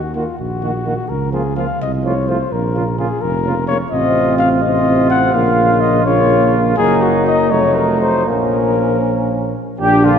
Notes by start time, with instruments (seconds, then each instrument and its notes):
Already playing: tuba D#2, trumpet F#4
0.15 trombone D#3, french horn A#3, trumpet F4, flugelhorn F#4
0.39 tuba A#1, trumpet F#4
0.62 trombone D#3, french horn A#3, flugelhorn F#4
0.85 trombone D#3, french horn A#3, flugelhorn F#4
1.09 tuba C#2, trumpet A#4
1.32 trombone F3, french horn A#3, flugelhorn F4, trumpet G#4
1.56 trombone F3, french horn A#3, flugelhorn F4, trumpet F5
1.81 tuba C2, trumpet D#5
2.04 trombone F3, french horn A3, flugelhorn F4, trumpet C#5
2.27 trombone F3, french horn A3, flugelhorn F4, trumpet C5
2.52 tuba A#1, trumpet A#4
2.74 trombone C#3, french horn A#3, flugelhorn F4
2.98 trombone C#3, french horn A#3, flugelhorn F4, trumpet G#4
3.21 tuba F1, trumpet A#4
3.45 trombone C#3, french horn A#3, flugelhorn F4
3.67 trombone C#3, french horn A#3, flugelhorn F4, trumpet C#5
3.91 tuba A1, trombone C3, french horn C4, flugelhorn F4, trumpet D#5
4.38 trumpet F5
4.62 trombone C3, french horn C4, flugelhorn F4, trumpet D#5
5.10 trumpet F#5
5.34 tuba A#1, trombone C#3, french horn A#3, flugelhorn F4, trumpet F5
5.81 trumpet D#5
6.05 trombone C#3, french horn A#3, flugelhorn F4, trumpet C#5
6.77 tuba F#1, trombone F#3, french horn A#3, flugelhorn D#4, trumpet G#4
7.02 trumpet F#4
7.26 trumpet D#5
7.51 tuba F1, trombone F#3, french horn A3, flugelhorn D#4, trumpet C#5
7.76 trumpet A#4
8.01 trumpet C5
8.26 tuba A#1, trombone F3, french horn A#3, flugelhorn C#4, trumpet A#4
9.80 tuba A#1, french horn D4, trumpet G4, flugelhorn G4
10.04 trombone D3, trumpet F4, flugelhorn F4